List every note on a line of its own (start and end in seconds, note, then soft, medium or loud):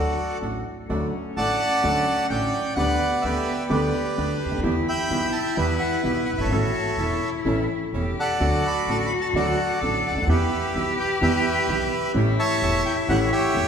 0.00 0.14 D2 medium
0.00 0.14 D3 medium
0.00 0.14 F#3 medium
0.00 0.13 A3 medium
0.00 0.14 A3 medium
0.00 0.13 D4 medium
0.00 0.14 D4 medium
0.00 0.14 F#4 medium
0.00 0.38 F#4 soft
0.00 0.61 F#4 medium
0.00 0.14 A4 medium
0.00 0.38 A4 soft
0.00 0.38 D5 medium
0.41 0.61 A1 soft
0.41 0.62 A1 medium
0.41 0.61 A2 soft
0.41 0.61 F#3 soft
0.41 0.61 A3 soft
0.41 0.61 D4 soft
0.41 0.61 F#4 soft
0.41 0.61 A4 soft
0.88 1.09 D2 medium
0.88 1.09 D3 medium
0.88 1.09 F#3 medium
0.88 1.08 A3 medium
0.88 1.09 A3 medium
0.88 2.79 C#4 medium
0.88 1.09 D4 medium
0.88 1.09 F#4 medium
0.88 1.09 A4 medium
1.36 1.56 A1 medium
1.36 1.57 A1 medium
1.36 1.56 A2 medium
1.36 1.57 F#3 soft
1.36 1.56 A3 soft
1.36 1.57 A3 soft
1.36 1.56 D4 soft
1.36 1.57 D4 soft
1.36 1.56 F#4 medium
1.36 1.57 A4 medium
1.36 2.26 D5 medium
1.36 2.27 F#5 medium
1.36 2.26 A5 loud
1.83 2.03 D2 medium
1.83 2.03 D2 loud
1.83 2.03 D3 medium
1.83 2.03 F#3 medium
1.83 2.03 A3 medium
1.83 2.02 D4 medium
1.83 2.03 D4 medium
1.83 2.03 F#4 medium
1.83 2.03 A4 medium
2.30 2.50 A1 medium
2.30 2.50 A2 medium
2.30 2.50 F#3 soft
2.30 2.49 A3 soft
2.30 2.50 A3 soft
2.30 2.50 D4 soft
2.30 2.50 F#4 medium
2.30 2.50 A4 soft
2.30 2.75 D5 medium
2.30 2.73 G5 medium
2.75 2.96 D2 medium
2.75 2.96 D3 medium
2.75 2.96 G3 medium
2.75 2.96 B3 medium
2.75 4.18 B3 medium
2.75 2.96 D4 medium
2.75 2.96 G4 medium
2.75 3.24 B4 medium
2.75 3.67 D5 medium
2.75 3.24 F#5 medium
3.22 3.43 D2 medium
3.22 3.44 D2 medium
3.22 3.43 D3 medium
3.22 3.43 G3 soft
3.22 3.43 B3 medium
3.22 3.43 B3 soft
3.22 3.43 D4 soft
3.22 3.43 G4 medium
3.22 3.43 G4 soft
3.22 3.71 G4 medium
3.22 3.71 B4 medium
3.22 3.66 E5 medium
3.69 3.90 D2 medium
3.69 3.90 D2 loud
3.69 3.89 D3 loud
3.69 3.89 G3 medium
3.69 3.89 B3 medium
3.69 3.90 B3 medium
3.69 3.89 D4 medium
3.69 3.90 G4 medium
3.69 4.60 G4 medium
3.69 4.60 B4 medium
3.69 4.36 D5 medium
4.16 4.37 D2 medium
4.16 4.37 D3 medium
4.16 4.37 G3 soft
4.16 4.36 B3 medium
4.16 4.37 B3 soft
4.16 4.64 D4 medium
4.16 4.36 D4 soft
4.16 4.36 G4 medium
4.16 4.37 G4 medium
4.45 4.51 C#2 soft
4.45 4.51 C#2 medium
4.51 4.57 D2 medium
4.58 4.63 D#2 medium
4.63 4.83 E2 medium
4.63 4.83 E3 medium
4.63 4.83 G3 medium
4.63 4.82 B3 medium
4.63 4.83 B3 medium
4.63 6.53 E4 loud
4.63 4.83 E4 medium
4.63 4.83 G4 medium
4.88 5.57 E5 medium
4.88 5.54 G5 medium
4.88 5.31 B5 loud
5.10 5.30 B1 medium
5.10 5.30 B2 medium
5.10 5.30 E3 soft
5.10 5.30 G3 soft
5.10 5.30 B3 soft
5.10 5.30 B3 medium
5.10 5.30 E4 soft
5.10 5.30 G4 medium
5.33 5.57 A5 medium
5.55 5.76 E2 medium
5.55 5.77 E2 medium
5.55 5.77 E3 medium
5.55 5.76 G3 medium
5.55 5.77 B3 medium
5.55 5.77 E4 medium
5.55 5.77 G4 medium
5.55 6.47 B4 medium
5.55 6.00 E5 medium
5.55 5.66 G5 medium
5.79 6.01 F#5 medium
6.02 6.23 B1 medium
6.02 6.24 B1 medium
6.02 6.23 B2 medium
6.02 6.23 E3 soft
6.02 6.23 G3 soft
6.02 6.23 B3 soft
6.02 6.24 B3 medium
6.02 6.24 E4 soft
6.02 6.23 G4 soft
6.02 6.24 G4 medium
6.02 6.25 E5 medium
6.25 6.31 F#5 medium
6.33 6.38 F#1 medium
6.33 6.39 F#1 medium
6.38 6.44 G1 medium
6.38 6.45 G1 medium
6.38 7.30 A4 medium
6.38 7.30 C#5 medium
6.38 7.28 E5 medium
6.44 6.50 G#1 medium
6.51 6.71 A1 medium
6.51 6.71 A2 medium
6.51 6.71 E3 medium
6.51 6.71 A3 medium
6.51 6.71 C#4 medium
6.51 6.71 E4 medium
6.51 7.02 F#4 loud
6.51 6.71 A4 medium
6.97 7.17 E1 medium
6.97 7.18 E1 soft
6.97 7.18 E2 medium
6.97 7.18 E3 soft
6.97 7.18 A3 soft
6.97 7.18 C#4 soft
6.97 7.18 E4 soft
6.97 7.94 E4 medium
6.97 7.18 A4 medium
7.45 7.65 A1 medium
7.45 7.65 A2 medium
7.45 7.65 E3 medium
7.45 7.65 A3 medium
7.45 7.65 C#4 medium
7.45 7.65 E4 medium
7.45 7.65 A4 medium
7.93 8.13 E1 medium
7.93 8.14 E1 soft
7.93 8.13 E2 soft
7.93 8.13 E3 soft
7.93 8.13 A3 soft
7.93 8.13 C#4 soft
7.93 8.13 E4 soft
7.93 8.38 G4 medium
7.93 8.13 A4 soft
7.93 8.14 A4 soft
8.20 9.09 A4 medium
8.20 9.09 D5 medium
8.20 8.67 F#5 medium
8.40 8.60 D2 medium
8.40 8.60 D3 medium
8.40 8.60 F#3 medium
8.40 8.61 A3 medium
8.40 8.60 D4 medium
8.40 9.82 F#4 loud
8.40 8.60 F#4 medium
8.40 8.60 A4 medium
8.67 8.90 B5 medium
8.87 9.07 A1 medium
8.87 9.08 A1 medium
8.87 9.08 A2 medium
8.87 9.07 F#3 soft
8.87 9.07 A3 soft
8.87 9.07 D4 soft
8.87 9.08 D4 soft
8.87 9.08 F#4 soft
8.87 9.08 A4 medium
8.87 9.08 A4 soft
8.91 8.97 A5 medium
9.06 9.13 B5 medium
9.21 9.28 A5 medium
9.33 9.54 D2 medium
9.33 9.55 D2 medium
9.33 9.55 D3 medium
9.33 9.54 F#3 medium
9.33 9.55 A3 medium
9.33 9.54 D4 medium
9.33 9.55 D4 medium
9.33 9.54 F#4 medium
9.33 9.55 A4 medium
9.33 10.25 A4 medium
9.33 10.25 D5 medium
9.38 9.80 F#5 medium
9.81 10.01 A1 medium
9.81 10.02 A1 medium
9.81 10.02 A2 soft
9.81 10.01 F#3 soft
9.81 10.01 A3 soft
9.81 10.01 D4 soft
9.81 10.02 D4 soft
9.81 10.01 F#4 soft
9.81 10.31 A4 loud
9.81 10.01 A4 soft
10.08 10.15 C#2 soft
10.08 10.17 C#2 soft
10.08 10.14 F#5 medium
10.16 10.21 D2 medium
10.16 10.23 D2 medium
10.22 10.27 D#2 medium
10.22 10.29 D#2 medium
10.22 10.28 F#5 medium
10.27 10.47 E2 loud
10.27 10.48 E2 medium
10.27 10.48 E3 medium
10.27 10.47 G3 medium
10.27 10.48 B3 medium
10.27 10.48 E4 medium
10.27 10.48 G4 medium
10.27 11.18 G4 medium
10.27 12.14 G4 loud
10.27 11.18 B4 medium
10.27 10.96 E5 medium
10.75 10.94 B1 medium
10.75 10.95 B1 soft
10.75 10.95 B2 medium
10.75 10.95 E3 soft
10.75 10.95 G3 soft
10.75 10.95 B3 medium
10.75 10.95 B3 soft
10.75 10.95 E4 medium
10.75 10.95 G4 medium
11.00 11.10 G5 medium
11.21 11.41 E2 loud
11.21 11.41 E3 medium
11.21 11.41 G3 medium
11.21 11.41 B3 medium
11.21 11.41 E4 medium
11.21 11.41 G4 loud
11.21 12.12 B4 medium
11.21 12.12 E5 medium
11.21 11.88 G5 medium
11.68 11.88 B1 medium
11.68 11.88 B2 medium
11.68 11.88 E3 soft
11.68 11.88 G3 soft
11.68 11.88 B3 soft
11.68 11.88 B3 medium
11.68 11.88 E4 soft
11.68 11.88 G4 medium
12.13 12.34 A1 medium
12.13 12.35 A1 loud
12.13 12.34 A2 medium
12.13 12.34 E3 medium
12.13 12.34 A3 medium
12.13 12.35 A3 medium
12.13 12.34 C#4 medium
12.13 12.35 C#4 medium
12.13 13.68 E4 loud
12.13 12.35 G4 medium
12.39 13.08 C#5 medium
12.39 13.29 E5 medium
12.39 12.83 A5 loud
12.62 12.82 E1 medium
12.62 12.82 E2 medium
12.62 12.82 E3 soft
12.62 12.82 A3 medium
12.62 12.82 A3 soft
12.62 12.82 C#4 soft
12.62 12.82 C#4 medium
12.62 12.82 G4 medium
12.86 12.96 G5 medium
13.09 13.29 A1 medium
13.09 13.29 A2 loud
13.09 13.29 E3 medium
13.09 13.29 A3 medium
13.09 13.29 C#4 medium
13.09 13.29 G4 medium
13.09 13.31 C#5 medium
13.09 13.20 F#5 medium
13.32 13.68 G4 medium
13.32 13.68 C#5 medium
13.32 13.68 E5 loud
13.54 13.68 E1 medium
13.54 13.68 E2 medium
13.54 13.68 E3 soft
13.54 13.68 A3 soft
13.54 13.68 A3 medium
13.54 13.68 C#4 soft
13.54 13.68 G4 medium